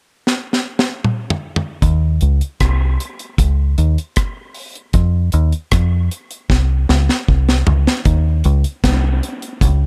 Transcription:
0.27 snare medium
0.53 snare medium
0.79 snare medium
1.04 mid tom medium
1.30 floor tom loud
1.56 floor tom medium
1.82 2.18 D#2 loud
1.82 kick loud
1.82 closed hi-hat medium
2.21 2.40 C#2 medium
2.21 closed hi-hat medium
2.41 closed hi-hat soft
2.60 2.96 C2 medium
2.60 kick loud
2.60 cross-stick loud
2.60 closed hi-hat medium
3.00 closed hi-hat medium
3.19 closed hi-hat medium
3.38 3.74 C#2 medium
3.38 kick loud
3.38 closed hi-hat medium
3.78 3.96 D#2 medium
3.78 closed hi-hat medium
3.98 closed hi-hat medium
4.16 kick loud
4.16 cross-stick loud
4.16 closed hi-hat medium
4.55 open hi-hat medium
4.75 closed hi-hat soft
4.93 5.30 F2 loud
4.93 kick loud
4.93 closed hi-hat medium
5.32 5.52 D#2 medium
5.32 closed hi-hat medium
5.52 closed hi-hat soft
5.71 6.08 F2 medium
5.71 kick loud
5.71 cross-stick loud
5.71 closed hi-hat medium
6.11 closed hi-hat medium
6.31 closed hi-hat medium
6.50 6.86 C2 medium
6.50 kick loud
6.50 snare medium
6.89 7.08 C#2 medium
6.89 snare medium
7.09 snare medium
7.28 7.64 C2 medium
7.28 kick loud
7.49 snare medium
7.67 7.86 C#2 medium
7.67 floor tom medium
7.87 snare medium
8.05 8.42 D#2 loud
8.05 kick loud
8.05 closed hi-hat medium
8.44 8.63 C#2 loud
8.44 closed hi-hat medium
8.64 closed hi-hat medium
8.84 9.20 C2 loud
8.84 kick loud
8.84 snare loud
8.84 closed hi-hat medium
9.23 closed hi-hat medium
9.42 closed hi-hat medium
9.61 9.86 C#2 medium
9.61 kick loud
9.61 closed hi-hat medium

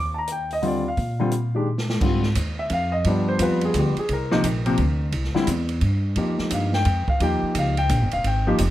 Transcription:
0.00 0.93 D#2 medium
0.00 0.16 D6 medium
0.18 0.29 A#5 medium
0.27 closed hi-hat medium
0.32 0.52 G5 medium
0.51 0.64 D#5 medium
0.51 open hi-hat soft
0.62 0.82 D3 medium
0.62 0.83 G3 medium
0.62 0.83 C4 medium
0.62 0.83 F4 medium
0.62 open hi-hat soft
0.67 0.87 D5 medium
0.88 1.64 F5 medium
0.97 1.97 A#2 medium
0.97 kick soft
0.97 open hi-hat soft
1.20 1.31 D3 medium
1.20 1.31 G3 medium
1.20 1.31 C4 medium
1.20 1.31 F4 medium
1.31 closed hi-hat medium
1.55 1.66 D#3 medium
1.55 1.66 G#3 medium
1.55 1.66 D4 medium
1.55 1.66 G4 medium
1.78 snare medium
1.90 snare medium
2.01 2.35 G#2 medium
2.01 2.22 D3 medium
2.01 2.22 G3 soft
2.01 2.22 C4 medium
2.01 2.22 F4 medium
2.01 kick medium
2.01 crash medium
2.23 snare soft
2.35 2.69 D#2 medium
2.35 kick soft
2.35 hi-hat pedal medium
2.35 ride medium
2.59 2.71 E5 medium
2.70 3.04 F2 medium
2.70 2.93 F5 medium
2.70 kick soft
2.70 ride medium
2.92 3.05 D#5 medium
3.04 3.38 G2 medium
3.04 3.39 F3 medium
3.04 3.39 G3 medium
3.04 3.39 B3 medium
3.04 3.40 D4 medium
3.04 3.28 D5 medium
3.04 kick soft
3.04 ride medium
3.28 3.40 C5 medium
3.39 3.73 F2 medium
3.39 3.93 F3 medium
3.39 3.93 G3 medium
3.39 3.93 B3 medium
3.39 3.93 F4 medium
3.39 3.63 B4 medium
3.39 kick soft
3.39 hi-hat pedal medium
3.39 ride medium
3.61 3.76 G#4 medium
3.61 ride soft
3.74 3.95 D2 medium
3.74 kick soft
3.74 hi-hat pedal medium
3.74 ride medium
3.79 3.98 G4 medium
3.96 4.10 G#4 medium
3.96 muted upright bass stroke soft
3.96 ride soft
4.09 4.43 C2 medium
4.09 kick soft
4.09 ride medium
4.13 5.11 A#4 medium
4.31 4.43 C3 medium
4.31 4.43 F3 medium
4.31 4.43 A#3 medium
4.31 4.43 D#4 loud
4.31 snare soft
4.43 4.77 A#1 medium
4.43 kick soft
4.43 hi-hat pedal medium
4.43 ride medium
4.66 4.77 C3 medium
4.66 4.77 F3 medium
4.66 4.77 A#3 medium
4.66 4.77 C4 medium
4.66 ride soft
4.78 5.12 D2 medium
4.78 kick soft
4.78 ride medium
5.12 5.33 C2 medium
5.12 kick soft
5.12 ride medium
5.24 snare soft
5.35 5.46 D3 medium
5.35 5.46 G3 medium
5.35 5.47 C4 medium
5.35 5.47 E4 medium
5.35 muted upright bass stroke soft
5.35 snare soft
5.47 5.81 E2 medium
5.47 kick soft
5.47 hi-hat pedal medium
5.47 ride medium
5.69 ride soft
5.81 6.15 G2 medium
5.81 kick soft
5.81 ride medium
6.16 6.37 F2 medium
6.16 6.69 F3 medium
6.16 6.69 A#3 medium
6.16 6.69 D#4 soft
6.16 6.69 G4 medium
6.16 kick soft
6.16 ride medium
6.38 muted upright bass stroke soft
6.38 snare soft
6.50 6.85 G2 medium
6.50 6.74 F5 medium
6.50 kick soft
6.50 hi-hat pedal medium
6.50 ride medium
6.73 7.06 G5 medium
6.73 snare medium
6.85 7.06 F2 medium
6.85 kick soft
6.85 ride medium
7.08 7.21 F5 medium
7.08 muted upright bass stroke soft
7.08 kick medium
7.20 7.41 D#2 medium
7.20 7.73 F3 medium
7.20 7.73 A#3 soft
7.20 7.73 D#4 soft
7.20 7.74 G4 medium
7.20 7.54 G5 medium
7.20 kick soft
7.20 ride medium
7.42 muted upright bass stroke soft
7.55 7.89 C#2 medium
7.55 kick soft
7.55 hi-hat pedal medium
7.55 ride medium
7.59 7.79 F5 medium
7.77 8.10 G5 medium
7.77 ride soft
7.89 8.01 A#1 loud
7.89 kick soft
7.89 hi-hat pedal soft
7.89 ride medium
8.01 8.12 G1 medium
8.11 8.24 D#1 medium
8.11 8.25 F5 medium
8.11 ride soft
8.24 8.58 G#1 medium
8.24 8.58 G5 medium
8.24 kick soft
8.24 ride medium
8.47 8.58 F3 medium
8.47 8.58 A#3 medium
8.47 8.58 D#4 medium
8.47 8.58 G4 medium
8.58 8.70 F1 medium
8.58 kick soft
8.58 hi-hat pedal medium
8.58 ride medium

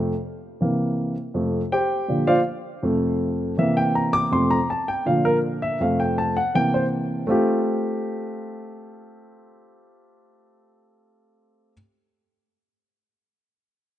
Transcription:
0.00 0.11 F2 soft
0.00 0.12 C3 soft
0.00 0.12 A3 medium
0.61 1.14 C3 soft
0.61 1.14 E3 soft
0.61 1.14 A#3 medium
1.34 1.59 F2 soft
1.34 1.60 C3 soft
1.34 1.60 A3 soft
1.72 2.24 G4 medium
1.72 2.24 C5 medium
1.72 2.24 G5 medium
2.08 2.33 A#2 soft
2.08 2.34 D3 soft
2.08 2.34 F3 medium
2.27 2.39 F4 medium
2.27 2.39 C5 medium
2.27 2.39 D5 medium
2.27 2.39 F5 medium
2.83 3.54 F2 medium
2.83 3.54 C3 soft
2.83 3.54 A3 medium
3.58 4.28 C3 medium
3.58 4.29 E3 soft
3.58 4.29 A#3 medium
3.58 3.76 E5 medium
3.77 3.95 G5 medium
3.95 4.13 A#5 medium
4.13 4.31 D6 loud
4.32 4.56 F2 medium
4.32 4.57 C3 soft
4.32 4.57 A3 medium
4.32 4.50 C6 medium
4.51 4.69 A#5 medium
4.70 4.88 A5 medium
4.88 5.06 G5 medium
5.06 5.77 A#2 soft
5.06 5.77 D3 soft
5.06 5.77 F3 medium
5.06 5.24 F5 medium
5.25 5.36 A#4 medium
5.62 5.80 E5 medium
5.80 6.33 F2 soft
5.80 6.34 C3 soft
5.80 6.34 A3 medium
5.80 5.99 F5 medium
6.00 6.17 G5 medium
6.18 6.36 A5 medium
6.37 6.54 F#5 medium
6.54 7.25 C3 soft
6.54 7.25 E3 soft
6.54 7.26 A#3 soft
6.54 6.73 G5 medium
6.74 6.85 C5 medium
7.27 11.71 A3 medium
7.27 11.72 C4 medium
7.27 11.73 F4 medium
7.27 11.73 G4 medium

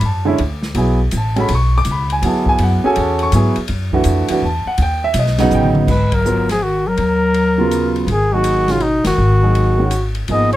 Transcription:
0.01 0.38 F#2 medium
0.01 ride medium
0.05 0.38 A5 medium
0.25 0.37 D3 medium
0.25 0.37 G#3 medium
0.25 0.38 C#4 medium
0.25 0.38 E4 medium
0.38 0.74 D2 medium
0.38 ride medium
0.62 snare soft
0.75 1.11 B1 medium
0.75 0.97 F#3 medium
0.75 0.98 B3 medium
0.75 0.98 E4 medium
0.75 0.98 G#4 medium
0.75 ride medium
1.11 1.48 A1 medium
1.11 hi-hat pedal medium
1.11 ride medium
1.17 1.38 A5 medium
1.36 1.47 G#3 medium
1.36 1.47 C#4 medium
1.36 1.48 F#4 medium
1.36 1.48 A4 medium
1.36 1.50 B5 medium
1.36 ride soft
1.48 1.84 B1 medium
1.48 ride medium
1.55 1.75 C#6 medium
1.78 1.87 D6 loud
1.85 2.21 C#2 medium
1.85 hi-hat pedal medium
1.85 ride medium
1.91 2.12 B5 medium
2.10 2.23 G#5 medium
2.10 ride soft
2.22 2.57 D2 medium
2.22 2.79 F#3 medium
2.22 2.79 B3 medium
2.22 2.79 E4 medium
2.22 2.80 G#4 medium
2.22 ride medium
2.27 2.48 A5 medium
2.46 2.60 G#5 loud
2.46 kick medium
2.58 2.81 F#2 medium
2.58 ride medium
2.63 2.84 F#5 medium
2.84 3.30 C#4 medium
2.84 3.30 F#4 medium
2.84 3.30 G#4 medium
2.84 3.31 A4 medium
2.84 2.96 G#5 medium
2.84 muted upright bass stroke soft
2.96 3.31 E2 loud
2.96 ride medium
3.00 3.21 A5 medium
3.19 3.55 C#6 loud
3.19 ride soft
3.32 3.54 G#2 medium
3.32 3.54 F#3 medium
3.32 3.54 B3 medium
3.32 3.55 E4 medium
3.32 3.55 G#4 medium
3.32 hi-hat pedal medium
3.32 ride medium
3.56 muted upright bass stroke soft
3.56 ride soft
3.68 4.04 F#2 medium
3.68 ride medium
3.92 4.27 E3 medium
3.92 4.27 A3 medium
3.92 4.27 D4 medium
3.92 4.27 F#4 medium
3.92 kick soft
4.04 4.27 F2 medium
4.04 hi-hat pedal medium
4.04 ride medium
4.28 4.41 E3 medium
4.28 4.41 A3 medium
4.28 4.41 D4 medium
4.28 4.42 F#4 medium
4.28 muted upright bass stroke soft
4.28 ride medium
4.42 4.64 E2 medium
4.42 4.67 A5 medium
4.65 4.79 F#5 medium
4.65 muted upright bass stroke soft
4.78 5.13 D#2 loud
4.78 ride medium
4.82 5.03 G5 loud
5.04 5.15 E5 loud
5.14 5.50 B1 loud
5.14 hi-hat pedal medium
5.14 ride medium
5.19 5.40 D#5 medium
5.26 snare soft
5.38 5.85 C#3 medium
5.38 5.86 F#3 medium
5.38 5.86 B3 medium
5.38 5.86 D#4 loud
5.38 5.53 F#5 medium
5.38 snare medium
5.38 ride medium
5.51 5.87 A1 medium
5.51 hi-hat pedal medium
5.55 5.68 G5 medium
5.63 mid tom medium
5.75 mid tom medium
5.87 6.94 G#1 medium
5.87 6.16 G#3 medium
5.87 6.16 B4 medium
5.87 kick medium
5.87 crash medium
6.11 6.50 F#3 medium
6.11 6.50 A#4 medium
6.11 kick medium
6.11 ride medium
6.25 6.46 F#3 medium
6.25 6.46 B3 medium
6.25 6.47 F4 medium
6.25 6.47 A#4 medium
6.25 hi-hat pedal medium
6.49 6.65 F3 medium
6.49 6.64 G#4 medium
6.49 snare soft
6.49 ride medium
6.63 6.89 D#3 medium
6.63 6.89 F#4 medium
6.87 7.96 F#3 medium
6.87 7.96 A#4 medium
6.97 8.04 D#2 medium
6.97 ride medium
7.34 ride medium
7.58 8.05 C#3 medium
7.58 8.05 F#3 medium
7.58 8.06 B3 medium
7.58 8.06 F4 medium
7.71 hi-hat pedal medium
7.71 ride medium
7.96 ride soft
8.07 9.01 G#1 medium
8.07 8.32 D#3 medium
8.07 ride medium
8.11 8.35 G#4 medium
8.32 8.71 D#3 medium
8.32 8.66 F#3 medium
8.32 8.67 A#3 medium
8.32 8.67 D#4 medium
8.32 8.73 F#4 medium
8.32 8.67 G#4 medium
8.44 hi-hat pedal soft
8.44 ride medium
8.68 8.81 C#3 medium
8.68 8.80 D#3 medium
8.68 8.80 G#3 medium
8.68 8.81 C#4 medium
8.68 8.84 F4 medium
8.68 8.81 F#4 medium
8.68 snare soft
8.68 ride soft
8.79 9.04 B2 medium
8.79 9.06 D#4 medium
8.79 ride soft
9.04 9.17 F#1 medium
9.04 10.11 D#3 medium
9.04 10.12 F#4 medium
9.04 snare medium
9.04 ride medium
9.18 10.24 G#1 medium
9.42 9.76 F#3 medium
9.42 9.76 A#3 soft
9.42 9.77 D#4 medium
9.42 9.77 G#4 medium
9.55 ride medium
9.78 9.90 D#3 medium
9.78 9.90 G#3 medium
9.78 9.90 C#4 medium
9.78 9.91 F#4 medium
9.91 hi-hat pedal medium
9.91 ride medium
10.15 ride soft
10.28 10.56 G#1 medium
10.28 10.50 F3 medium
10.28 10.51 A#3 soft
10.28 10.51 B3 medium
10.28 10.51 D#4 medium
10.28 10.51 G#4 medium
10.28 10.52 D#5 medium
10.28 ride medium
10.53 10.56 C#5 medium
10.53 ride soft

